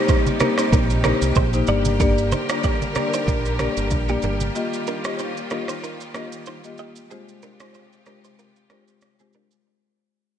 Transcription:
Already playing: string section C3 G3 A#3 D#4 G4, marimba A#3 D#4 G4 C5
0.08 clean electric guitar D#4 C5, kick, low conga, shaker
0.27 high conga, shaker
0.40 marimba A#3 D#4 G4 C5, clean electric guitar D4 A#4, cross-stick, high conga, shaker
0.58 clean electric guitar D#4 C5, cross-stick, shaker
0.72 fingered electric bass A#1, clean electric guitar D#4 A#4, kick, shaker
0.90 shaker
1.04 marimba A#3 D#4 G4 C5, clean electric guitar D4 A#4, cross-stick, high conga, shaker
1.22 fingered electric bass C2, shaker
1.35 fingered electric bass A#1, clean electric guitar D#4 C5, kick, high conga, shaker
1.53 marimba A#3 D#4 G4 C5, shaker
1.67 fingered electric bass G1, string section D3 G3 A#4, marimba A#3 D4 G4 D5, clean electric guitar G4 D5, low conga, shaker
1.85 high conga, shaker
2.00 marimba A#3 D4 G4 D5, clean electric guitar D4 A#4, kick, low conga, shaker
2.18 shaker
2.32 clean electric guitar D#4 C5, high conga, shaker
2.49 marimba A#3 D4 G4 D5, clean electric guitar F4 D5, cross-stick, shaker
2.64 clean electric guitar G4 D5, kick, low conga, shaker
2.82 high conga, shaker
2.95 marimba A#3 D4 G4 D5, clean electric guitar D4 A#4, cross-stick, high conga, shaker
3.14 clean electric guitar D#4 C5, shaker
3.28 fingered electric bass A#1, clean electric guitar D4 A#4, kick, shaker
3.45 shaker
3.59 marimba A#3 D4 G4 D5, clean electric guitar D4 A#4, cross-stick, high conga, shaker
3.77 fingered electric bass G1, shaker
3.91 fingered electric bass A#1, kick, high conga, shaker
4.09 marimba A#3 D4 G4 D5, clean electric guitar A#3 G4, shaker
4.22 fingered electric bass G1, clean electric guitar D4 A#4, low conga, shaker
4.40 high conga, shaker
4.55 string section D#3 F4, marimba A#3 F4 G4 D#5, shaker
4.73 shaker
4.87 clean electric guitar D4 A#4, shaker
5.05 marimba A#3 F4 G4 D#5, clean electric guitar D#4 C5, cross-stick, shaker
5.19 clean electric guitar D#4 C5, shaker
5.37 shaker
5.50 marimba A#3 F4 G4 D#5, clean electric guitar D4 A#4, cross-stick, shaker
5.68 clean electric guitar D#4 C5, cross-stick, shaker
5.84 clean electric guitar D#4 A#4, shaker
6.01 shaker
6.14 marimba A#3 F4 G4 D#5, clean electric guitar D4 A#4, cross-stick, shaker
6.32 shaker
6.46 clean electric guitar D#4 C5, shaker
6.64 marimba A#3 F4 G4 D#5, shaker
6.78 clean electric guitar G4 D#5, shaker
6.96 shaker
7.10 string section C3 G#3 F4 G4, marimba G#3 F4 G4 C5, clean electric guitar C4 G#4, shaker
7.29 shaker
7.43 clean electric guitar D4 A#4, shaker
7.60 marimba G#3 F4 G4 C5, clean electric guitar D#4 C5, cross-stick, shaker
7.74 clean electric guitar F4 C5, shaker
7.93 shaker
8.06 marimba G#3 F4 G4 C5, clean electric guitar D4 A#4, cross-stick, shaker
8.24 clean electric guitar D#4 C5, shaker
8.39 clean electric guitar F4 A#4, shaker
8.56 shaker
8.70 marimba G#3 F4 G4 C5, clean electric guitar D4 A#4, cross-stick, shaker
8.88 shaker
9.01 cross-stick, shaker
9.19 marimba G#3 F4 G4 C5, clean electric guitar C4 G#4, shaker
9.33 clean electric guitar D4 A#4, shaker
9.51 shaker

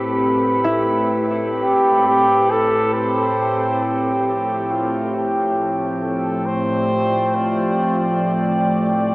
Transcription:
Already playing: ambient pad A2 A3 C4 G4 A4, glass harmonica B4 B5
0.64 harp E4
1.63 flugelhorn G4
2.07 flugelhorn G4
2.51 flugelhorn A4
2.94 glass harmonica G4 G5, flugelhorn C5
3.63 ambient pad A3
3.73 ambient pad F3
3.84 flugelhorn G4
4.27 flugelhorn G4
4.71 flugelhorn F4
5.14 flugelhorn G4
6.03 flugelhorn A4
6.12 ambient pad D5
6.46 flugelhorn C5
7.36 flugelhorn F4
8.24 flugelhorn G4

